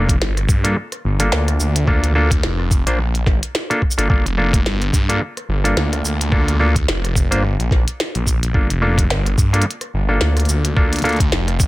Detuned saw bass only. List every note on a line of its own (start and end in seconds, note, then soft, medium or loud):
0.00 0.19 F1 loud
0.21 0.47 G1 loud
0.49 0.75 G2 medium
1.05 1.30 G1 loud
1.32 1.58 D2 loud
1.60 2.41 D2 medium
2.43 2.84 F1 loud
2.87 3.40 A#1 loud
3.98 4.08 G1 medium
4.10 4.23 G1 medium
4.26 4.64 F1 loud
4.66 4.91 G1 loud
4.93 5.19 G2 loud
5.49 5.75 G1 loud
5.77 6.03 D2 loud
6.04 6.86 D2 loud
6.88 7.29 F1 loud
7.31 7.57 G1 loud
7.59 7.84 A#1 loud
8.15 8.40 A#1 loud
8.42 8.53 A#1 medium
8.54 8.68 G1 medium
8.71 9.08 F1 loud
9.10 9.36 G1 loud
9.38 9.64 G2 loud
9.94 10.19 G1 loud
10.21 10.47 D2 loud
10.49 11.30 D2 medium
11.32 11.67 F1 loud